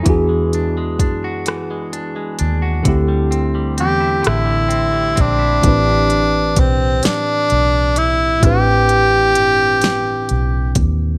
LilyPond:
<<
  \new Staff \with { instrumentName = "Tenor saxophone" } { \time 6/8 \key a \dorian \tempo 4. = 43 r2. | r4 g'8 e'4 d'8~ | d'4 c'8 d'4 e'8 | g'2~ g'8 r8 | }
  \new Staff \with { instrumentName = "Tine electric piano" } { \time 6/8 \key a \dorian <b d' e' fis' gis'>2. | <d a c' e' g'>2. | <a, e c' d' g' b'>2. | <a, c' d' e' g' b'>2. | }
  \new Staff \with { instrumentName = "Clean electric guitar" } { \time 6/8 \key a \dorian e16 gis16 d'16 gis16 d'16 fis'16 e16 gis16 d'16 gis16 d'16 fis'16 | d16 g16 c'16 g16 c'16 e'16 d16 g16 c'16 g16 c'16 e'16 | r2. | r2. | }
  \new Staff \with { instrumentName = "Fingered electric bass" } { \clef bass \time 6/8 \key a \dorian e,4 fis,4. dis,8 | d,4 e,8 a,,4 bes,,8 | a,,4 b,,8 r8 b,,4 | a,,4 g,,4 b,,8 dis,8 | }
  \new DrumStaff \with { instrumentName = "Drums" } \drummode { \time 6/8 <hh bd>8 hh8 <hh bd>8 <hh ss>8 hh8 hh8 | <hh bd>8 hh8 hh8 <hh ss>8 hh8 <hh bd>8 | <hh bd>8 hh8 <hh bd>8 <hh sn>8 hh8 hh8 | <hh bd>8 hh8 hh8 <hh sn>8 hh8 <hh bd>8 | }
>>